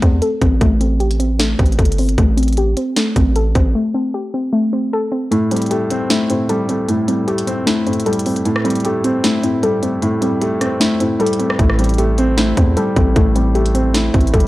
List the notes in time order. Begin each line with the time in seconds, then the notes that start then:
Already playing: A3 G4
0.02 E2 C4, kick, closed hi-hat
0.22 A4, closed hi-hat
0.42 A1 C4, kick, closed hi-hat
0.61 A1 A3, kick, closed hi-hat
0.81 C4, closed hi-hat
1.00 G4, closed hi-hat
1.11 closed hi-hat
1.20 C4, closed hi-hat
1.39 A3, snare, closed hi-hat
1.59 A1 C4, kick, closed hi-hat
1.66 closed hi-hat
1.72 closed hi-hat
1.79 G1 A4, kick, closed hi-hat
1.85 closed hi-hat
1.92 closed hi-hat
1.98 C4, closed hi-hat, open hi-hat
2.09 closed hi-hat
2.18 A1 A3, kick, closed hi-hat
2.37 C4, closed hi-hat
2.43 closed hi-hat
2.48 closed hi-hat
2.53 closed hi-hat
2.57 G4, closed hi-hat
2.77 C4, closed hi-hat
2.96 A3, snare, closed hi-hat
3.16 A1 C4, kick, closed hi-hat
3.36 A4, closed hi-hat
3.55 A1 C4, kick, closed hi-hat
3.75 A3
3.94 C4
4.14 G4
4.34 C4
4.53 A3
4.73 C4
4.93 A4
5.12 C4
5.31 A2 A3, closed hi-hat
5.51 G3 C4, closed hi-hat
5.56 closed hi-hat
5.62 closed hi-hat
5.66 closed hi-hat
5.71 A3 G4, closed hi-hat
5.90 C4, closed hi-hat
6.10 A3 E4, snare, closed hi-hat
6.30 A2 C4, closed hi-hat
6.49 G3 A4, closed hi-hat
6.69 A3 C4, closed hi-hat
6.88 A2 A3, closed hi-hat
7.08 G3 C4, closed hi-hat
7.28 A3 G4, closed hi-hat
7.38 closed hi-hat
7.47 C4, closed hi-hat
7.67 A3 E4, snare, closed hi-hat
7.87 A2 C4, closed hi-hat
7.93 closed hi-hat
8.00 closed hi-hat
8.06 G3 A4, closed hi-hat
8.13 closed hi-hat
8.19 closed hi-hat
8.26 A3 C4, closed hi-hat, open hi-hat
8.36 closed hi-hat
8.45 A2 A3, closed hi-hat
8.56 cross-stick
8.64 G3 C4, closed hi-hat
8.70 closed hi-hat
8.75 closed hi-hat
8.80 closed hi-hat
8.84 A3 G4, closed hi-hat
9.04 C4, closed hi-hat
9.24 A3 E4, snare, closed hi-hat
9.43 A2 C4, closed hi-hat
9.63 G3 A4, closed hi-hat
9.83 A3 C4, closed hi-hat
10.02 A2 A3, closed hi-hat
10.21 G3 C4, closed hi-hat
10.41 A3 G4, closed hi-hat
10.61 C4, cross-stick, closed hi-hat
10.80 A3 E4, snare, closed hi-hat
11.00 A2 C4, closed hi-hat
11.19 G3 A4, closed hi-hat
11.26 closed hi-hat
11.33 closed hi-hat
11.39 A3 C4, closed hi-hat
11.50 cross-stick
11.59 A1 A2 A3, kick, closed hi-hat
11.70 cross-stick
11.79 G3 C4, closed hi-hat
11.84 closed hi-hat
11.89 closed hi-hat
11.94 closed hi-hat
11.98 A3 G4, closed hi-hat
12.18 C4, closed hi-hat
12.37 A3 E4, snare, closed hi-hat
12.57 E2 A2 C4, kick, closed hi-hat
12.77 G3 A4, closed hi-hat
12.96 A1 A3 C4, kick, closed hi-hat
13.16 A1 A2 A3, kick, closed hi-hat
13.36 G3 C4, closed hi-hat
13.55 A3 G4, closed hi-hat
13.66 closed hi-hat
13.75 C4, closed hi-hat
13.94 A3 E4, snare, closed hi-hat
14.14 A1 A2 C4, kick, closed hi-hat
14.21 closed hi-hat
14.27 closed hi-hat
14.34 G1 G3 A4, kick, closed hi-hat
14.40 closed hi-hat